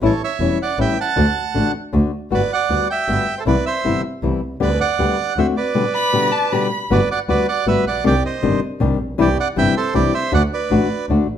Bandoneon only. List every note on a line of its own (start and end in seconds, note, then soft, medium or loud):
0.05 0.22 A4 medium
0.05 0.22 C#5 medium
0.24 0.58 C#5 medium
0.24 0.58 E5 medium
0.62 0.79 D5 medium
0.62 0.79 F#5 medium
0.81 0.98 E5 medium
0.81 0.99 G5 medium
1.01 1.72 F#5 medium
1.01 1.72 A5 medium
2.34 2.51 B4 medium
2.34 2.53 D5 medium
2.53 2.88 D5 medium
2.53 2.87 F#5 medium
2.90 3.35 E5 medium
2.90 3.39 G5 medium
3.38 3.44 A4 medium
3.38 3.42 C5 medium
3.47 3.65 B4 medium
3.47 3.65 D5 medium
3.66 4.02 C5 medium
3.66 4.01 E5 medium
4.62 4.80 B4 medium
4.62 4.79 D5 medium
4.80 5.33 D5 medium
4.80 5.39 F#5 medium
5.38 5.47 C5 medium
5.38 5.47 E5 medium
5.57 6.67 B4 medium
5.57 6.67 D5 medium
6.92 7.09 B4 medium
6.92 7.09 D5 medium
7.11 7.19 D5 medium
7.11 7.20 F#5 loud
7.30 7.47 B4 medium
7.30 7.47 D5 medium
7.48 7.66 D5 medium
7.48 7.67 F#5 loud
7.68 7.85 B4 medium
7.68 7.85 E5 medium
7.87 8.05 D5 medium
7.87 8.04 F#5 medium
8.06 8.24 G4 medium
8.06 8.23 D5 medium
8.25 8.60 C5 medium
8.25 8.60 D#5 medium
9.21 9.37 G4 medium
9.21 9.38 D5 loud
9.40 9.48 D5 medium
9.40 9.48 F#5 loud
9.58 9.75 E5 medium
9.58 9.75 G5 loud
9.77 9.94 A4 medium
9.77 9.94 C5 medium
9.94 10.12 G4 medium
9.94 10.14 D5 medium
10.14 10.32 C5 medium
10.14 10.33 E5 medium
10.34 10.43 D5 medium
10.34 10.42 F#5 loud
10.54 11.06 B4 medium
10.54 11.06 D5 medium